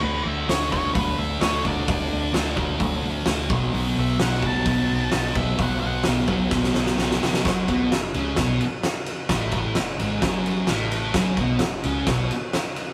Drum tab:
RD |----------------|----------------|----------------|----------------|
HH |----o---o---o---|o---o---o---o---|o---o---o---o---|o---o-----------|
SD |----o-------o---|----o-------o---|----o-------o---|----o---oooooooo|
BD |------o-o-----o-|o-----o-o-----o-|------o-o-----o-|o-----o-o-------|

RD |x-x-x-x-x-x-x-x-|x-x-x-x-x-x-x-x-|x-x-x-x-x-x-x-x-|
HH |----------------|----------------|----------------|
SD |o---o---o---o---|o---o---o---o---|o---o---o---o---|
BD |o-o-----o-------|o-o-----o-------|o-o-----o-------|